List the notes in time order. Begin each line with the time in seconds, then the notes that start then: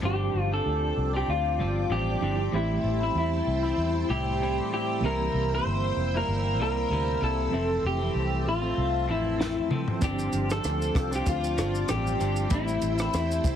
0.01 G1 G2 F3 C4 D4 C5 D5 G5 D6
0.05 G4
0.34 G1
0.51 F3 C4 D4 A4
0.66 D2
0.97 C2
1.13 F3 C4 D4 G4
1.28 D2 F4
1.59 G1 G2 F3 C4 D4
1.90 A1 G2 F3 C4 D4 G4
2.20 G1 G2 F3 C4 D4 E4
2.51 A1 A2 E3 G3 A3 B3 C4 E4 A5 E6
2.55 E4 G4
2.83 A1
3.01 G3 C4 E4
3.15 E2 E4
3.47 C2
3.63 G3 C4 E4
3.77 E2
4.09 C2 A2 G3 C4 E4 G4
4.41 A2 G3 C4 E4
4.72 A2 G3 C4 E4 G4
5.00 C2 E3 A#3 C4 G5
5.04 C3 G3 A#3 E4 G4 A#4
5.34 C2
5.52 G3 A#3 E4 C5
5.65 G1
5.96 F1
6.14 G3 A#3 E4 A#4
6.28 G1
6.59 C2 C3 G3 A#3 E4 A#4
6.90 D2 C3 G3 A#3 E4
7.21 C2 C3 G3 A#3 E4 A4
7.50 F1 F2 E3 F3 A3 C4 E5 A5
7.55 A4
7.84 F1 G4
8.00 E3 A3 C4
8.15 C2
8.47 A1 F4
8.62 A3 C4
8.78 C2
9.08 A1 F2 E3 A3 C4 E4
9.39 F2 E3 A3 C4, snare
9.69 F2 E3 F3 A3 C4 E4 A4, mid tom
9.88 floor tom
9.99 G1 G2 F3 C4 D4, kick, closed hi-hat, shaker
10.03 D4 G4 F5 G5 D6
10.19 shaker
10.33 G1, closed hi-hat, shaker
10.49 F3 C4 D4 A4, cross-stick, shaker
10.64 D2, cross-stick, closed hi-hat, shaker
10.82 shaker
10.95 C2, kick, cross-stick, closed hi-hat, shaker
11.11 F3 C4 D4, shaker
11.15 G4
11.26 D2 F4, kick, closed hi-hat, shaker
11.44 shaker
11.57 G1 G2 F3 C4 D4, cross-stick, closed hi-hat, shaker
11.75 shaker
11.87 A1 G2 F3 C4 D4 G4, cross-stick, closed hi-hat, shaker
12.07 shaker
12.18 G1 G2 F3 C4 D4, closed hi-hat, shaker
12.36 shaker
12.49 A1 A2 E3 G3 A3 C4 E4 A5 E6, kick, closed hi-hat, shaker
12.54 E4 G4
12.68 shaker
12.82 A1, closed hi-hat, shaker
12.98 G3 C4 E4, cross-stick, shaker
13.13 E2 E4, cross-stick, closed hi-hat, shaker
13.31 shaker
13.44 C2, kick, closed hi-hat, shaker